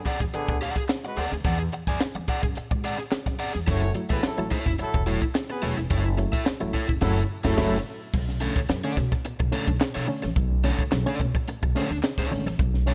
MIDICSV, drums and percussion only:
0, 0, Header, 1, 2, 480
1, 0, Start_track
1, 0, Tempo, 557103
1, 1248, Time_signature, 4, 2, 24, 8
1, 11151, End_track
2, 0, Start_track
2, 0, Title_t, "Drums"
2, 46, Note_on_c, 9, 39, 69
2, 48, Note_on_c, 9, 36, 81
2, 50, Note_on_c, 9, 38, 30
2, 53, Note_on_c, 9, 42, 71
2, 132, Note_off_c, 9, 39, 0
2, 134, Note_off_c, 9, 36, 0
2, 136, Note_off_c, 9, 38, 0
2, 139, Note_off_c, 9, 42, 0
2, 176, Note_on_c, 9, 36, 94
2, 176, Note_on_c, 9, 38, 36
2, 262, Note_off_c, 9, 36, 0
2, 262, Note_off_c, 9, 38, 0
2, 290, Note_on_c, 9, 42, 82
2, 376, Note_off_c, 9, 42, 0
2, 418, Note_on_c, 9, 36, 111
2, 504, Note_off_c, 9, 36, 0
2, 530, Note_on_c, 9, 42, 79
2, 617, Note_off_c, 9, 42, 0
2, 654, Note_on_c, 9, 36, 84
2, 740, Note_off_c, 9, 36, 0
2, 761, Note_on_c, 9, 39, 94
2, 769, Note_on_c, 9, 38, 103
2, 770, Note_on_c, 9, 42, 81
2, 848, Note_off_c, 9, 39, 0
2, 855, Note_off_c, 9, 38, 0
2, 856, Note_off_c, 9, 42, 0
2, 896, Note_on_c, 9, 38, 37
2, 982, Note_off_c, 9, 38, 0
2, 1007, Note_on_c, 9, 46, 64
2, 1093, Note_off_c, 9, 46, 0
2, 1136, Note_on_c, 9, 38, 39
2, 1222, Note_off_c, 9, 38, 0
2, 1244, Note_on_c, 9, 42, 83
2, 1246, Note_on_c, 9, 36, 116
2, 1330, Note_off_c, 9, 42, 0
2, 1332, Note_off_c, 9, 36, 0
2, 1483, Note_on_c, 9, 42, 77
2, 1569, Note_off_c, 9, 42, 0
2, 1612, Note_on_c, 9, 36, 92
2, 1699, Note_off_c, 9, 36, 0
2, 1727, Note_on_c, 9, 39, 102
2, 1728, Note_on_c, 9, 38, 102
2, 1729, Note_on_c, 9, 42, 78
2, 1813, Note_off_c, 9, 39, 0
2, 1814, Note_off_c, 9, 38, 0
2, 1816, Note_off_c, 9, 42, 0
2, 1966, Note_on_c, 9, 36, 84
2, 1969, Note_on_c, 9, 42, 73
2, 2052, Note_off_c, 9, 36, 0
2, 2055, Note_off_c, 9, 42, 0
2, 2095, Note_on_c, 9, 36, 101
2, 2181, Note_off_c, 9, 36, 0
2, 2201, Note_on_c, 9, 42, 85
2, 2287, Note_off_c, 9, 42, 0
2, 2336, Note_on_c, 9, 36, 102
2, 2422, Note_off_c, 9, 36, 0
2, 2445, Note_on_c, 9, 42, 89
2, 2531, Note_off_c, 9, 42, 0
2, 2570, Note_on_c, 9, 38, 37
2, 2656, Note_off_c, 9, 38, 0
2, 2681, Note_on_c, 9, 39, 96
2, 2685, Note_on_c, 9, 38, 100
2, 2686, Note_on_c, 9, 42, 88
2, 2767, Note_off_c, 9, 39, 0
2, 2772, Note_off_c, 9, 38, 0
2, 2773, Note_off_c, 9, 42, 0
2, 2810, Note_on_c, 9, 36, 85
2, 2813, Note_on_c, 9, 38, 37
2, 2896, Note_off_c, 9, 36, 0
2, 2899, Note_off_c, 9, 38, 0
2, 2926, Note_on_c, 9, 46, 66
2, 3012, Note_off_c, 9, 46, 0
2, 3054, Note_on_c, 9, 38, 43
2, 3140, Note_off_c, 9, 38, 0
2, 3167, Note_on_c, 9, 36, 117
2, 3167, Note_on_c, 9, 42, 80
2, 3253, Note_off_c, 9, 36, 0
2, 3253, Note_off_c, 9, 42, 0
2, 3293, Note_on_c, 9, 38, 35
2, 3379, Note_off_c, 9, 38, 0
2, 3403, Note_on_c, 9, 42, 78
2, 3489, Note_off_c, 9, 42, 0
2, 3534, Note_on_c, 9, 36, 100
2, 3620, Note_off_c, 9, 36, 0
2, 3646, Note_on_c, 9, 38, 116
2, 3647, Note_on_c, 9, 42, 80
2, 3651, Note_on_c, 9, 39, 97
2, 3732, Note_off_c, 9, 38, 0
2, 3734, Note_off_c, 9, 42, 0
2, 3737, Note_off_c, 9, 39, 0
2, 3887, Note_on_c, 9, 38, 32
2, 3888, Note_on_c, 9, 36, 84
2, 3890, Note_on_c, 9, 39, 68
2, 3890, Note_on_c, 9, 42, 71
2, 3973, Note_off_c, 9, 38, 0
2, 3974, Note_off_c, 9, 36, 0
2, 3976, Note_off_c, 9, 39, 0
2, 3976, Note_off_c, 9, 42, 0
2, 4017, Note_on_c, 9, 36, 99
2, 4019, Note_on_c, 9, 38, 38
2, 4103, Note_off_c, 9, 36, 0
2, 4106, Note_off_c, 9, 38, 0
2, 4127, Note_on_c, 9, 42, 81
2, 4213, Note_off_c, 9, 42, 0
2, 4258, Note_on_c, 9, 36, 101
2, 4345, Note_off_c, 9, 36, 0
2, 4369, Note_on_c, 9, 42, 82
2, 4455, Note_off_c, 9, 42, 0
2, 4496, Note_on_c, 9, 36, 84
2, 4582, Note_off_c, 9, 36, 0
2, 4606, Note_on_c, 9, 39, 99
2, 4610, Note_on_c, 9, 38, 104
2, 4611, Note_on_c, 9, 42, 86
2, 4693, Note_off_c, 9, 39, 0
2, 4696, Note_off_c, 9, 38, 0
2, 4697, Note_off_c, 9, 42, 0
2, 4740, Note_on_c, 9, 38, 41
2, 4826, Note_off_c, 9, 38, 0
2, 4849, Note_on_c, 9, 46, 65
2, 4935, Note_off_c, 9, 46, 0
2, 4979, Note_on_c, 9, 38, 40
2, 5065, Note_off_c, 9, 38, 0
2, 5089, Note_on_c, 9, 36, 125
2, 5089, Note_on_c, 9, 42, 92
2, 5175, Note_off_c, 9, 36, 0
2, 5175, Note_off_c, 9, 42, 0
2, 5326, Note_on_c, 9, 42, 78
2, 5412, Note_off_c, 9, 42, 0
2, 5454, Note_on_c, 9, 36, 100
2, 5541, Note_off_c, 9, 36, 0
2, 5567, Note_on_c, 9, 38, 112
2, 5569, Note_on_c, 9, 42, 75
2, 5571, Note_on_c, 9, 39, 105
2, 5653, Note_off_c, 9, 38, 0
2, 5655, Note_off_c, 9, 42, 0
2, 5657, Note_off_c, 9, 39, 0
2, 5809, Note_on_c, 9, 36, 83
2, 5811, Note_on_c, 9, 42, 70
2, 5895, Note_off_c, 9, 36, 0
2, 5897, Note_off_c, 9, 42, 0
2, 5937, Note_on_c, 9, 36, 102
2, 6023, Note_off_c, 9, 36, 0
2, 6049, Note_on_c, 9, 36, 107
2, 6049, Note_on_c, 9, 49, 88
2, 6050, Note_on_c, 9, 38, 100
2, 6135, Note_off_c, 9, 36, 0
2, 6135, Note_off_c, 9, 49, 0
2, 6136, Note_off_c, 9, 38, 0
2, 6416, Note_on_c, 9, 36, 108
2, 6418, Note_on_c, 9, 38, 107
2, 6502, Note_off_c, 9, 36, 0
2, 6504, Note_off_c, 9, 38, 0
2, 6530, Note_on_c, 9, 36, 116
2, 6532, Note_on_c, 9, 38, 118
2, 6532, Note_on_c, 9, 49, 95
2, 6616, Note_off_c, 9, 36, 0
2, 6618, Note_off_c, 9, 49, 0
2, 6619, Note_off_c, 9, 38, 0
2, 7010, Note_on_c, 9, 36, 124
2, 7013, Note_on_c, 9, 49, 91
2, 7096, Note_off_c, 9, 36, 0
2, 7099, Note_off_c, 9, 49, 0
2, 7141, Note_on_c, 9, 38, 41
2, 7227, Note_off_c, 9, 38, 0
2, 7249, Note_on_c, 9, 42, 74
2, 7335, Note_off_c, 9, 42, 0
2, 7375, Note_on_c, 9, 36, 104
2, 7462, Note_off_c, 9, 36, 0
2, 7492, Note_on_c, 9, 38, 109
2, 7493, Note_on_c, 9, 39, 95
2, 7494, Note_on_c, 9, 42, 91
2, 7578, Note_off_c, 9, 38, 0
2, 7580, Note_off_c, 9, 39, 0
2, 7580, Note_off_c, 9, 42, 0
2, 7728, Note_on_c, 9, 39, 71
2, 7729, Note_on_c, 9, 36, 94
2, 7730, Note_on_c, 9, 38, 38
2, 7733, Note_on_c, 9, 42, 76
2, 7814, Note_off_c, 9, 39, 0
2, 7815, Note_off_c, 9, 36, 0
2, 7816, Note_off_c, 9, 38, 0
2, 7819, Note_off_c, 9, 42, 0
2, 7858, Note_on_c, 9, 36, 99
2, 7861, Note_on_c, 9, 38, 37
2, 7944, Note_off_c, 9, 36, 0
2, 7947, Note_off_c, 9, 38, 0
2, 7969, Note_on_c, 9, 42, 94
2, 8055, Note_off_c, 9, 42, 0
2, 8099, Note_on_c, 9, 36, 106
2, 8185, Note_off_c, 9, 36, 0
2, 8212, Note_on_c, 9, 42, 89
2, 8298, Note_off_c, 9, 42, 0
2, 8336, Note_on_c, 9, 36, 93
2, 8422, Note_off_c, 9, 36, 0
2, 8446, Note_on_c, 9, 39, 100
2, 8452, Note_on_c, 9, 38, 108
2, 8453, Note_on_c, 9, 42, 98
2, 8533, Note_off_c, 9, 39, 0
2, 8538, Note_off_c, 9, 38, 0
2, 8539, Note_off_c, 9, 42, 0
2, 8578, Note_on_c, 9, 38, 37
2, 8664, Note_off_c, 9, 38, 0
2, 8687, Note_on_c, 9, 46, 70
2, 8774, Note_off_c, 9, 46, 0
2, 8818, Note_on_c, 9, 38, 43
2, 8904, Note_off_c, 9, 38, 0
2, 8925, Note_on_c, 9, 42, 85
2, 8928, Note_on_c, 9, 36, 113
2, 9011, Note_off_c, 9, 42, 0
2, 9014, Note_off_c, 9, 36, 0
2, 9163, Note_on_c, 9, 42, 84
2, 9249, Note_off_c, 9, 42, 0
2, 9294, Note_on_c, 9, 36, 88
2, 9380, Note_off_c, 9, 36, 0
2, 9405, Note_on_c, 9, 39, 98
2, 9407, Note_on_c, 9, 38, 113
2, 9408, Note_on_c, 9, 42, 84
2, 9491, Note_off_c, 9, 39, 0
2, 9493, Note_off_c, 9, 38, 0
2, 9494, Note_off_c, 9, 42, 0
2, 9648, Note_on_c, 9, 36, 87
2, 9651, Note_on_c, 9, 42, 71
2, 9734, Note_off_c, 9, 36, 0
2, 9737, Note_off_c, 9, 42, 0
2, 9777, Note_on_c, 9, 36, 106
2, 9863, Note_off_c, 9, 36, 0
2, 9888, Note_on_c, 9, 42, 81
2, 9974, Note_off_c, 9, 42, 0
2, 10019, Note_on_c, 9, 36, 99
2, 10105, Note_off_c, 9, 36, 0
2, 10132, Note_on_c, 9, 42, 91
2, 10218, Note_off_c, 9, 42, 0
2, 10258, Note_on_c, 9, 38, 33
2, 10344, Note_off_c, 9, 38, 0
2, 10362, Note_on_c, 9, 39, 102
2, 10371, Note_on_c, 9, 38, 98
2, 10372, Note_on_c, 9, 42, 100
2, 10448, Note_off_c, 9, 39, 0
2, 10457, Note_off_c, 9, 38, 0
2, 10458, Note_off_c, 9, 42, 0
2, 10493, Note_on_c, 9, 36, 101
2, 10496, Note_on_c, 9, 38, 37
2, 10579, Note_off_c, 9, 36, 0
2, 10582, Note_off_c, 9, 38, 0
2, 10608, Note_on_c, 9, 46, 76
2, 10694, Note_off_c, 9, 46, 0
2, 10738, Note_on_c, 9, 38, 43
2, 10824, Note_off_c, 9, 38, 0
2, 10849, Note_on_c, 9, 36, 121
2, 10851, Note_on_c, 9, 42, 89
2, 10935, Note_off_c, 9, 36, 0
2, 10938, Note_off_c, 9, 42, 0
2, 10978, Note_on_c, 9, 38, 36
2, 11064, Note_off_c, 9, 38, 0
2, 11087, Note_on_c, 9, 42, 86
2, 11151, Note_off_c, 9, 42, 0
2, 11151, End_track
0, 0, End_of_file